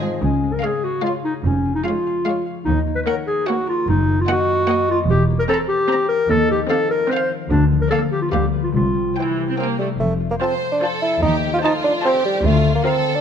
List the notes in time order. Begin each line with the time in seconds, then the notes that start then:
Already playing: G#2 D#3 D#4 C5 D#5 D#6
0.01 F3 C4
0.11 D#3
0.22 C#2 C#3 C#4
0.43 G#3
0.53 A#4
0.62 G#3 G#4 C#5 F5
0.84 F#4 G#4
1.04 G#3 F4 C#5 F5
1.25 D#4 G#4
1.45 F1 F2 F3 C#4
1.65 F4
1.75 D#4
1.84 G#3 F4 G#4 C#5 F5
2.06 F5
2.25 G#3 C#5 F5 C#6
2.46 F5
2.65 D#2 D#3 D#4
2.87 A#3
2.96 B4
3.06 A#3 A#4 C#5 F#5
3.27 G#4 A#4
3.46 A#3 F#4 C#5 F#5
3.67 F4 A#4
3.87 F#1 F#2 D#4
4.08 A#3
4.21 F4
4.28 A#3 D#5 F#5
4.32 F#4
4.48 A#4
4.68 A#3 D#5 F#5
4.89 F4 A#4
5.09 E1 E2 E3 G4
5.30 A#3
5.39 A#4
5.49 C4 A4 C5 A#5
5.69 G4 A#4
5.90 C4 C5 G5 A#5
6.09 A#4
6.29 D#2 D#3 A4
6.50 F3 G4
6.70 C4 A4 C5 F5
6.90 F4 A#4
7.10 C4 C5 F5
7.31 F4
7.50 D2 D3 D4
7.72 F3
7.82 A#4
7.90 A#3 A4 D5 F5
8.12 F4 G4
8.22 F4
8.31 D2 D3 G3 G4 B4 F5
8.53 F4 B4
8.64 F4
8.74 C2 C3 F4
8.94 G3
9.16 E3 E4 C5 G5
9.37 G4
9.50 C4
9.58 A#3 C4 C5 G5
9.79 G3 A3 G4
10.00 F1 F2 F3 A3
10.10 A3
10.20 F4
10.30 A#3 C5
10.41 C4 F4 A4 C5 A5
10.52 F5
10.61 C6
10.72 D4 A5
10.82 F4 A4 C5 A5 C6
10.92 F5
11.02 E4 A4
11.13 C5
11.22 D#2 D#3 D#4 G4
11.34 D#4
11.44 A3
11.54 F4
11.63 D#4 F4 C5 A5
11.75 A4
11.84 D4 F5
11.94 C6
12.03 C4 F4 G4 C5 F5 A5
12.14 A4
12.25 G3 C5
12.35 F4
12.44 D2 D3 A3 F4
12.54 D4
12.65 A#3
12.74 A#3 F4
12.84 C4 F4 A4 A#4 F5
12.94 F4
13.04 F5
13.15 D4 A#5